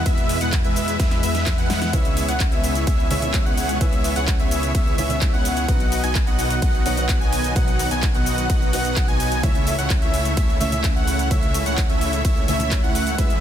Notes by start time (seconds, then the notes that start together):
Already playing: B2 E3 G#3 E4
0.06 E2 G#3 B3 E4 B4 E5, kick, closed hi-hat, ride, shaker
0.18 closed hi-hat, shaker
0.29 open hi-hat, shaker
0.41 E2 G#3 B3 E4 B4 F#5, closed hi-hat, shaker
0.53 kick, clap, closed hi-hat, ride, shaker
0.64 E2 G#3 B3 E4 B4 E5, closed hi-hat, shaker
0.76 open hi-hat, shaker
0.88 closed hi-hat, shaker
1.00 E2 G#3 B3 E4 B4 E5, kick, snare, closed hi-hat, ride, shaker
1.11 snare, closed hi-hat, shaker
1.23 E2 G#3 B3 E4 B4 E5, open hi-hat, shaker
1.35 snare, closed hi-hat, shaker
1.46 kick, snare, clap, closed hi-hat, ride, shaker
1.58 E2 G#3 B3 E4 B4 F#5, closed hi-hat, shaker
1.70 snare, open hi-hat, shaker
1.82 snare, closed hi-hat, shaker
1.92 C#2 C#3 G#3 B3 C#4 E4 G#4 B4 C#5 E5, kick, closed hi-hat, ride, shaker
2.05 closed hi-hat, shaker
2.17 open hi-hat, shaker
2.29 C#2 B3 E4 G#4 C#5 F#5, closed hi-hat, shaker
2.40 kick, clap, closed hi-hat, ride, shaker
2.52 C#2 B3 E4 G#4 C#5 E5, closed hi-hat, shaker
2.64 open hi-hat, shaker
2.75 closed hi-hat, shaker
2.87 C#2 B3 E4 G#4 C#5 E5, kick, closed hi-hat, ride, shaker
2.99 shaker
3.10 C#2 C#3 G#3 B3 C#4 E4 G#4 C#5 E5, open hi-hat, shaker
3.21 C#3 G#3 C#4 E4 C#5, closed hi-hat, shaker
3.34 kick, clap, closed hi-hat, ride, shaker
3.46 C#2 B3 E4 G#4 C#5 F#5, shaker
3.57 open hi-hat, shaker
3.69 closed hi-hat, shaker
3.80 C#2 C#3 G#3 B3 C#4 E4 G#4 B4 E5, kick, closed hi-hat, ride, shaker
3.93 closed hi-hat, shaker
4.04 open hi-hat, shaker
4.16 C#2 B3 E4 G#4 C#5 F#5, closed hi-hat, shaker
4.28 kick, clap, closed hi-hat, ride, shaker
4.39 C#2 B3 E4 G#4 C#5 E5, closed hi-hat, shaker
4.51 open hi-hat, shaker
4.63 closed hi-hat, shaker
4.75 C#2 B3 E4 C#5 E5, kick, closed hi-hat, ride, shaker
4.87 shaker
4.97 C#2 C#3 G#3 B3 C#4 E4 G#4 C#5 E5, open hi-hat, shaker
5.09 C#3 G#3 C#4 E4 C#5, closed hi-hat, shaker
5.21 kick, clap, closed hi-hat, ride, shaker
5.33 C#2 B3 E4 G#4 C#5 F#5, shaker
5.45 open hi-hat, shaker
5.57 closed hi-hat, shaker
5.67 B1 B2 D#3 F#3 B3 D#4 F#4 B4 D#5 F#5, kick, closed hi-hat, ride, shaker
5.80 closed hi-hat, shaker
5.92 open hi-hat, shaker
6.04 B1 B3 D#4 F#4 D#5 G#5, closed hi-hat, shaker
6.15 kick, clap, closed hi-hat, ride, shaker
6.27 B1 B3 D#4 F#4 D#5 F#5, closed hi-hat, shaker
6.39 open hi-hat, shaker
6.50 closed hi-hat, shaker
6.62 B1 B3 D#4 F#4 D#5 F#5, kick, closed hi-hat, ride, shaker
6.74 shaker
6.85 B1 B2 F#3 B3 D#4 F#4 C#5 D#5 F#5, open hi-hat, shaker
6.96 B2 F#3 B3 D#4 C#5, closed hi-hat, shaker
7.09 kick, clap, closed hi-hat, ride, shaker
7.21 B1 B3 D#4 F#4 D#5 G#5, shaker
7.33 open hi-hat, shaker
7.44 closed hi-hat, shaker
7.55 B1 B2 F#3 B3 D#4 F#4 B4 D#5 F#5, kick, closed hi-hat, ride, shaker
7.68 closed hi-hat, shaker
7.79 open hi-hat, shaker
7.91 B1 B3 D#4 F#4 D#5 G#5, closed hi-hat, shaker
8.03 kick, clap, closed hi-hat, ride, shaker
8.15 B1 B3 D#4 F#4 D#5 F#5, closed hi-hat, shaker
8.26 open hi-hat, shaker
8.38 closed hi-hat, shaker
8.50 B1 D#4 F#4 F#5, kick, closed hi-hat, ride, shaker
8.62 shaker
8.72 B1 B2 F#3 B3 D#4 F#4 B4 D#5 F#5, open hi-hat, shaker
8.85 closed hi-hat, shaker
8.96 kick, clap, closed hi-hat, ride, shaker
9.08 B1 B3 D#4 F#4 D#5 G#5, closed hi-hat, shaker
9.20 open hi-hat, shaker
9.32 closed hi-hat, shaker
9.42 C#2 C#3 E3 A3 C#4 E4 C#5 E5, kick, closed hi-hat, ride, shaker
9.55 closed hi-hat, shaker
9.67 open hi-hat, shaker
9.79 C#2 A3 C#4 E4 C#5 F#5, closed hi-hat, shaker
9.90 kick, clap, closed hi-hat, ride, shaker
10.02 C#2 A3 C#4 E4 C#5 E5, closed hi-hat, shaker
10.14 open hi-hat, shaker
10.25 closed hi-hat, shaker
10.37 C#2 A3 C#4 E4 C#5 E5, kick, closed hi-hat, ride, shaker
10.49 shaker
10.60 C#2 C#3 A3 C#4 E4 C#5 E5, open hi-hat, shaker
10.71 C#3 A3 C#4 E4 E5, closed hi-hat, shaker
10.84 kick, clap, closed hi-hat, ride, shaker
10.96 C#2 A3 C#4 E4 C#5 F#5, shaker
11.07 open hi-hat, shaker
11.19 closed hi-hat, shaker
11.30 C#2 C#3 A3 C#4 E4 C#5 E5, kick, closed hi-hat, ride, shaker
11.43 closed hi-hat, shaker
11.54 open hi-hat, shaker
11.66 C#2 A3 C#4 E4 C#5 F#5, closed hi-hat, shaker
11.78 kick, clap, closed hi-hat, ride, shaker
11.89 C#2 A3 C#4 E4 C#5 E5, closed hi-hat, shaker
12.01 open hi-hat, shaker
12.13 closed hi-hat, shaker
12.25 C#2 A3 C#4 E4 C#5 E5, kick, closed hi-hat, ride, shaker
12.37 shaker
12.48 C#2 C#3 A3 C#4 E4 C#5 E5, open hi-hat, shaker
12.59 C#3 A3 C#4 E4 E5, closed hi-hat, shaker
12.71 kick, clap, closed hi-hat, ride, shaker
12.83 C#2 A3 C#4 E4 C#5 F#5, shaker
12.95 open hi-hat, shaker
13.07 closed hi-hat, shaker
13.17 E2 B2 G#3 B3 E4 B4 E5, kick, closed hi-hat, ride, shaker
13.30 closed hi-hat, shaker